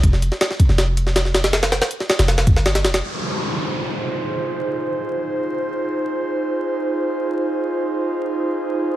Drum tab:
HH |x-x-x-x-x-x-x-xx|xxxxx-xxxxx-xxxx|----------------|----------------|
SD |-o-ooo-oo--ooooo|oooo-ooooo-ooooo|----------------|----------------|
BD |o-----o---------|----------o-----|----------------|----------------|

HH |----------------|----------------|
SD |----------------|----------------|
BD |----------------|----------------|